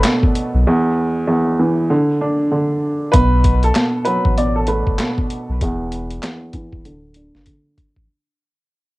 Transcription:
0.00 0.05 B2 medium
0.00 0.67 F#3 medium
0.00 0.66 A3 loud
0.00 clap loud
0.00 closed hi-hat medium
0.05 0.66 B2 medium
0.05 snare loud
0.23 kick medium
0.35 closed hi-hat medium
0.54 0.65 B1 medium
0.67 1.26 E2 loud
1.27 1.90 E2 medium
1.59 1.90 E3 medium
1.90 2.50 D3 medium
2.21 3.14 D4 medium
2.52 3.14 D3 medium
3.12 3.72 B1 loud
3.12 3.74 B2 medium
3.12 3.59 B4 medium
3.12 kick loud
3.12 closed hi-hat medium
3.44 kick medium
3.44 closed hi-hat medium
3.63 4.04 A4 medium
3.63 closed hi-hat soft
3.75 4.36 B2 medium
3.75 snare loud
3.75 clap medium
3.75 closed hi-hat medium
4.05 5.61 F#3 medium
4.05 4.33 B4 medium
4.05 closed hi-hat medium
4.25 4.83 A1 medium
4.25 kick loud
4.38 4.98 B2 medium
4.38 4.54 D5 medium
4.38 closed hi-hat medium
4.56 4.67 A4 medium
4.67 5.61 A3 medium
4.67 4.96 B4 medium
4.67 closed hi-hat medium
4.87 4.98 F#1 medium
4.87 kick medium
4.98 5.61 B2 medium
4.98 snare loud
4.98 clap medium
4.98 closed hi-hat medium
5.18 kick medium
5.30 closed hi-hat medium
5.49 5.60 B1 medium
5.61 6.19 E1 loud
5.61 6.21 E2 loud
5.61 kick loud
5.61 closed hi-hat medium
5.92 closed hi-hat medium
6.10 closed hi-hat soft
6.23 6.85 E2 medium
6.23 snare loud
6.23 clap medium
6.23 closed hi-hat medium
6.53 6.85 E3 medium
6.53 kick medium
6.53 closed hi-hat medium
6.72 6.84 D1 medium
6.72 kick loud
6.85 7.31 D1 loud
6.85 7.45 D3 medium
6.85 closed hi-hat medium
7.14 8.09 D4 medium
7.14 closed hi-hat medium
7.35 7.46 F#1 loud
7.35 snare soft
7.46 8.09 D3 medium
7.46 kick medium
7.46 closed hi-hat medium
7.78 kick medium
7.78 closed hi-hat medium
7.96 8.08 A1 medium
7.96 kick medium

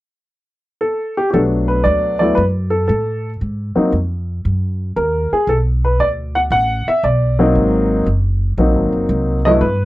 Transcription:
0.81 1.14 A4 medium
1.17 1.29 G4 medium
1.31 1.84 B1 medium
1.31 2.14 F#3 soft
1.31 2.14 A3 soft
1.31 2.14 B3 soft
1.31 1.34 G4 medium
1.31 1.42 A4 medium
1.35 2.14 D4 soft
1.68 1.85 B4 medium
1.84 2.36 D2 medium
1.84 2.18 D5 medium
2.19 2.35 F#3 soft
2.19 2.36 A3 soft
2.19 2.36 B3 soft
2.19 2.36 E4 medium
2.19 2.37 D5 medium
2.35 2.88 F#2 medium
2.35 2.43 B4 medium
2.70 2.86 A4 medium
2.88 3.39 A2 medium
2.88 3.29 A4 medium
3.41 3.74 G#2 medium
3.75 3.91 F#3 soft
3.75 3.91 A#3 soft
3.75 3.91 C4 soft
3.75 3.91 D#4 medium
3.75 muted upright bass stroke soft
3.92 4.43 F2 medium
4.45 4.95 F#2 medium
4.96 5.29 D#2 medium
4.96 5.29 A#4 medium
5.32 5.47 G#4 medium
5.32 muted upright bass stroke soft
5.47 5.98 B1 medium
5.47 5.57 A4 medium
5.85 6.01 B4 medium
6.00 6.50 D2 medium
6.00 6.08 D5 medium
6.35 6.40 F#5 medium
6.50 6.84 A1 medium
6.50 6.88 F#5 medium
6.87 7.03 E5 medium
6.87 muted upright bass stroke soft
7.03 7.53 B1 medium
7.03 7.44 D5 medium
7.39 8.03 F#3 medium
7.39 8.04 A#3 medium
7.39 8.04 C4 medium
7.39 8.04 D#4 medium
7.55 8.05 G#1 medium
8.06 8.57 F#1 medium
8.58 8.75 A#1 medium
8.58 9.38 F#3 soft
8.58 9.38 A#3 soft
8.58 9.38 C4 soft
8.58 9.39 D#4 medium
8.75 8.92 G#1 soft
8.93 9.09 F#1 medium
9.09 9.59 C2 medium
9.45 9.60 G2 medium
9.45 9.60 F#3 medium
9.45 9.61 A3 medium
9.45 9.61 B3 medium
9.45 9.61 E4 medium
9.45 9.50 D#5 medium
9.61 9.85 G2 medium
9.61 9.85 B4 medium

